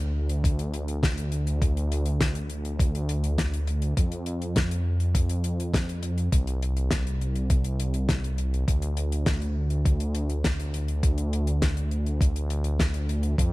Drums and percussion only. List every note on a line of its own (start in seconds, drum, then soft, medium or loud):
0.29 closed hi-hat medium
0.44 kick loud
0.44 closed hi-hat medium
0.59 closed hi-hat medium
0.74 closed hi-hat medium
0.88 closed hi-hat soft
1.03 kick loud
1.03 snare loud
1.03 closed hi-hat medium
1.18 closed hi-hat medium
1.32 closed hi-hat medium
1.47 closed hi-hat medium
1.62 kick loud
1.62 closed hi-hat medium
1.77 closed hi-hat medium
1.92 closed hi-hat medium
2.06 closed hi-hat medium
2.21 kick loud
2.21 snare loud
2.21 closed hi-hat loud
2.35 closed hi-hat medium
2.50 closed hi-hat medium
2.65 closed hi-hat medium
2.79 kick loud
2.79 closed hi-hat medium
2.95 closed hi-hat soft
3.09 closed hi-hat medium
3.24 closed hi-hat medium
3.38 kick loud
3.38 snare loud
3.38 closed hi-hat medium
3.54 closed hi-hat medium
3.67 closed hi-hat medium
3.82 closed hi-hat medium
3.97 kick loud
3.97 closed hi-hat loud
4.12 closed hi-hat medium
4.26 closed hi-hat medium
4.42 closed hi-hat medium
4.56 kick loud
4.56 snare loud
4.56 closed hi-hat loud
4.71 closed hi-hat medium
5.00 closed hi-hat soft
5.15 kick loud
5.15 closed hi-hat loud
5.29 closed hi-hat medium
5.44 closed hi-hat medium
5.60 closed hi-hat medium
5.74 kick loud
5.74 snare loud
5.74 closed hi-hat loud
5.89 closed hi-hat medium
6.03 closed hi-hat medium
6.18 closed hi-hat medium
6.32 kick loud
6.32 closed hi-hat loud
6.47 closed hi-hat medium
6.63 closed hi-hat medium
6.77 closed hi-hat medium
6.91 kick loud
6.91 snare loud
6.91 closed hi-hat loud
7.07 closed hi-hat medium
7.21 closed hi-hat medium
7.36 closed hi-hat medium
7.50 kick loud
7.50 closed hi-hat loud
7.64 closed hi-hat medium
7.80 closed hi-hat medium
7.94 closed hi-hat medium
8.09 kick loud
8.09 snare loud
8.09 closed hi-hat loud
8.24 closed hi-hat medium
8.38 closed hi-hat medium
8.54 closed hi-hat soft
8.68 kick loud
8.68 closed hi-hat medium
8.82 closed hi-hat medium
8.97 closed hi-hat medium
9.12 closed hi-hat medium
9.26 kick loud
9.26 snare loud
9.26 closed hi-hat medium
9.42 closed hi-hat medium
9.70 closed hi-hat medium
9.85 kick loud
9.85 closed hi-hat loud
10.00 closed hi-hat medium
10.15 closed hi-hat medium
10.30 closed hi-hat medium
10.44 kick loud
10.44 snare loud
10.44 closed hi-hat loud
10.60 closed hi-hat medium
10.74 closed hi-hat medium
10.88 closed hi-hat medium
11.03 kick loud
11.03 closed hi-hat loud
11.18 closed hi-hat medium
11.33 closed hi-hat medium
11.47 closed hi-hat medium
11.62 kick loud
11.62 snare loud
11.62 closed hi-hat loud
11.77 closed hi-hat soft
11.91 closed hi-hat soft
12.06 closed hi-hat medium
12.21 kick loud
12.21 closed hi-hat medium
12.36 closed hi-hat medium
12.50 closed hi-hat medium
12.64 closed hi-hat medium
12.80 kick loud
12.80 snare loud
12.80 closed hi-hat medium
12.94 closed hi-hat medium
13.09 closed hi-hat medium
13.23 closed hi-hat medium
13.38 kick loud
13.38 closed hi-hat loud